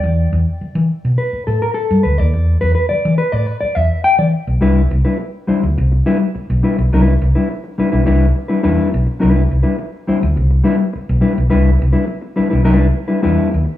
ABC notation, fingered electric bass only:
X:1
M:4/4
L:1/16
Q:1/4=104
K:Clyd
V:1 name="Fingered electric bass" clef=bass
E,,2 E,, z2 E, z B,, z2 A,, z2 G,, D,, ^D,, | E,,2 E,, z2 E, z A,, z2 E,, z2 E, z B,,, | C,,2 C,, z4 D,, C,,2 z3 B,,, z B,,, | C,,2 C,, z4 B,,, C,,2 z2 E,, z B,,, z |
C,,2 C,, z4 D,, C,,2 z3 B,,, z B,,, | C,,2 C,, z4 B,,, C,,2 z2 E,, z ^D,, z |]